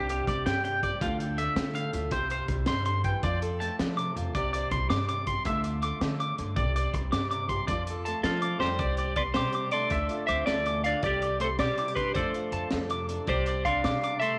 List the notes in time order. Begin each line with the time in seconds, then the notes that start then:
Already playing: C2 C3 G3 D4 G4
0.09 G4 C5, closed hi-hat
0.27 C2 G3 D5, kick, closed hi-hat
0.46 G2 G5, snare, closed hi-hat
0.64 C3 G5, closed hi-hat
0.83 G4 D5, kick, closed hi-hat
1.01 D2 D3 F4, kick, closed hi-hat
1.20 A4, closed hi-hat
1.38 A3 E5, closed hi-hat
1.56 D3, snare, closed hi-hat
1.74 A2 F5, closed hi-hat
1.93 D2 F4, closed hi-hat
2.11 C2 C3 G4 C5, kick, closed hi-hat
2.30 C5, closed hi-hat
2.48 C2 G3, kick, closed hi-hat
2.66 G2 C3 C6, snare, closed hi-hat
2.85 D3 C6, closed hi-hat
3.04 E3 G5, kick, closed hi-hat
3.23 F2 F3 F4 D5, kick, closed hi-hat
3.42 A4, closed hi-hat
3.60 A3 A5, closed hi-hat
3.79 F3, snare, closed hi-hat
3.97 C3 D6, closed hi-hat
4.16 F2 F4, closed hi-hat
4.35 C2 C3 G4 D5, kick, closed hi-hat
4.53 C5 D5, closed hi-hat
4.71 C2 G3 C6, kick, closed hi-hat
4.90 G2 D6, snare, closed hi-hat
5.09 C3 D6, closed hi-hat
5.27 G4 C6, kick, closed hi-hat
5.45 D2 D3 F4 E5, kick, closed hi-hat
5.64 closed hi-hat
5.82 A3 D6, closed hi-hat
6.01 D3 F3, snare, closed hi-hat
6.20 D6, closed hi-hat
6.38 G2 D3, closed hi-hat
6.56 C2 C3 G4 D5, kick, closed hi-hat
6.76 C5 D5, closed hi-hat
6.94 C2 G3, muted clean electric guitar stroke, kick, closed hi-hat
7.12 G2 D6, snare, closed hi-hat
7.31 C3 D6, closed hi-hat
7.49 G4 C6, kick, closed hi-hat
7.67 F2 F3 F4 D5, kick, closed hi-hat
7.87 A4, closed hi-hat
8.05 A3 A5, closed hi-hat
8.23 F3 F4 A4, snare, closed hi-hat
8.28 F3
8.42 D6, muted steel-string acoustic guitar stroke, closed hi-hat
8.60 F2 G3 G4 C5, snare
8.64 F4
8.79 C2 D5, muted steel-string acoustic guitar stroke, kick, closed hi-hat
8.97 G4 D5, closed hi-hat
9.16 G3 B3 B4 D5 C6, kick, closed hi-hat
9.34 C3 G3 G4 C5 D6, snare, closed hi-hat
9.53 C3 G4 D6, closed hi-hat
9.71 A3 D4 A4 D5 C6, closed hi-hat
9.90 D2 D3 E5, kick, closed hi-hat
10.09 F4, closed hi-hat
10.27 D2 A3 C4 C5 E5 D6, closed hi-hat
10.46 D2 F3 A3 A4 D5, snare, closed hi-hat
10.66 E3 D6, closed hi-hat
10.84 D3 D4 D5 F5, closed hi-hat
11.03 C2 C3 G3 G4 D5, kick, closed hi-hat
11.22 G4 D5, closed hi-hat
11.40 G3 A3 A4 C5 C6, closed hi-hat
11.59 C3 G3 G4 C5 D5 D6, snare, closed hi-hat
11.78 C3 E4 D6, closed hi-hat
11.88 G4
11.95 G3 D4 G4 B4 C6, kick, closed hi-hat
12.14 F2 F3 A3 A4 C5 D5, kick, closed hi-hat
12.34 F4, closed hi-hat
12.52 F2 A3 A5, closed hi-hat
12.71 F2 A4, snare, closed hi-hat
12.90 C3 F4 D6, closed hi-hat
13.09 D4, closed hi-hat
13.27 C2 C3 G3 G4 C5 D5, kick, closed hi-hat
13.46 D5, closed hi-hat
13.65 G3 D4 D5 F5 C6, kick, closed hi-hat
13.84 C3 C5 D6, snare, closed hi-hat
14.02 C3 G4 D6, closed hi-hat
14.20 A3 A4 E5 C6, closed hi-hat